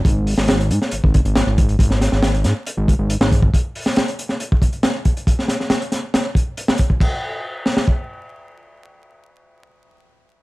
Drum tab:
CC |----------------|----------------|----------------|----------------|
HH |x-o-xxx-x-xxx-xx|x-x-xxx-x-x-x-x-|x-o-xxx-x-xxx-xx|x-x-xxx-x-x-x-x-|
SD |---oo--o----o---|-oooo-o------o--|---oo--o----o---|-oooo-o-o----o--|
BD |o--------oo---o-|o---------o---oo|o--------oo---o-|o---------o---oo|

CC |x---------------|----------------|
HH |----------------|----------------|
SD |------oo--------|----------------|
BD |o-------o-------|----------------|